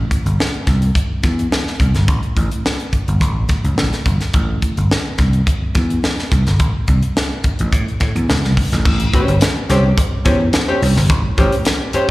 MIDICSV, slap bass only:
0, 0, Header, 1, 3, 480
1, 0, Start_track
1, 0, Tempo, 563380
1, 1776, Time_signature, 4, 2, 24, 8
1, 10316, End_track
2, 0, Start_track
2, 0, Title_t, "Slap bass"
2, 0, Program_c, 0, 36
2, 218, Note_on_c, 0, 31, 77
2, 305, Note_off_c, 0, 31, 0
2, 571, Note_on_c, 0, 36, 87
2, 756, Note_off_c, 0, 36, 0
2, 1053, Note_on_c, 0, 40, 70
2, 1238, Note_off_c, 0, 40, 0
2, 1532, Note_on_c, 0, 36, 81
2, 1631, Note_off_c, 0, 36, 0
2, 1659, Note_on_c, 0, 31, 86
2, 1773, Note_off_c, 0, 31, 0
2, 1773, Note_on_c, 0, 33, 93
2, 1872, Note_off_c, 0, 33, 0
2, 2016, Note_on_c, 0, 33, 77
2, 2114, Note_off_c, 0, 33, 0
2, 2623, Note_on_c, 0, 31, 66
2, 2735, Note_off_c, 0, 31, 0
2, 2735, Note_on_c, 0, 33, 91
2, 2920, Note_off_c, 0, 33, 0
2, 3102, Note_on_c, 0, 37, 71
2, 3190, Note_off_c, 0, 37, 0
2, 3220, Note_on_c, 0, 33, 75
2, 3317, Note_off_c, 0, 33, 0
2, 3455, Note_on_c, 0, 31, 77
2, 3554, Note_off_c, 0, 31, 0
2, 3697, Note_on_c, 0, 33, 103
2, 3882, Note_off_c, 0, 33, 0
2, 4068, Note_on_c, 0, 31, 88
2, 4154, Note_off_c, 0, 31, 0
2, 4419, Note_on_c, 0, 36, 76
2, 4604, Note_off_c, 0, 36, 0
2, 4900, Note_on_c, 0, 40, 77
2, 5085, Note_off_c, 0, 40, 0
2, 5380, Note_on_c, 0, 36, 73
2, 5479, Note_off_c, 0, 36, 0
2, 5508, Note_on_c, 0, 31, 84
2, 5624, Note_off_c, 0, 31, 0
2, 5624, Note_on_c, 0, 33, 100
2, 5721, Note_off_c, 0, 33, 0
2, 5861, Note_on_c, 0, 36, 72
2, 5960, Note_off_c, 0, 36, 0
2, 6476, Note_on_c, 0, 33, 68
2, 6560, Note_off_c, 0, 33, 0
2, 6582, Note_on_c, 0, 45, 82
2, 6680, Note_off_c, 0, 45, 0
2, 6825, Note_on_c, 0, 45, 76
2, 6922, Note_off_c, 0, 45, 0
2, 6947, Note_on_c, 0, 40, 75
2, 7035, Note_off_c, 0, 40, 0
2, 7061, Note_on_c, 0, 37, 89
2, 7188, Note_off_c, 0, 37, 0
2, 7188, Note_on_c, 0, 36, 82
2, 7275, Note_off_c, 0, 36, 0
2, 7431, Note_on_c, 0, 33, 87
2, 7517, Note_off_c, 0, 33, 0
2, 7544, Note_on_c, 0, 33, 112
2, 7727, Note_off_c, 0, 33, 0
2, 7905, Note_on_c, 0, 31, 93
2, 7993, Note_off_c, 0, 31, 0
2, 8259, Note_on_c, 0, 36, 96
2, 8444, Note_off_c, 0, 36, 0
2, 8737, Note_on_c, 0, 40, 86
2, 8921, Note_off_c, 0, 40, 0
2, 9220, Note_on_c, 0, 36, 94
2, 9317, Note_off_c, 0, 36, 0
2, 9344, Note_on_c, 0, 31, 102
2, 9456, Note_off_c, 0, 31, 0
2, 9456, Note_on_c, 0, 33, 118
2, 9554, Note_off_c, 0, 33, 0
2, 9694, Note_on_c, 0, 33, 87
2, 9792, Note_off_c, 0, 33, 0
2, 10316, End_track
3, 0, Start_track
3, 0, Title_t, "Muted slap bass strokes"
3, 941, Note_on_c, 9, 29, 44
3, 1026, Note_off_c, 9, 29, 0
3, 2495, Note_on_c, 9, 29, 42
3, 2580, Note_off_c, 9, 29, 0
3, 4790, Note_on_c, 9, 29, 46
3, 4875, Note_off_c, 9, 29, 0
3, 6341, Note_on_c, 9, 29, 39
3, 6426, Note_off_c, 9, 29, 0
3, 8627, Note_on_c, 9, 29, 52
3, 8713, Note_off_c, 9, 29, 0
3, 10171, Note_on_c, 9, 29, 49
3, 10257, Note_off_c, 9, 29, 0
3, 10316, End_track
0, 0, End_of_file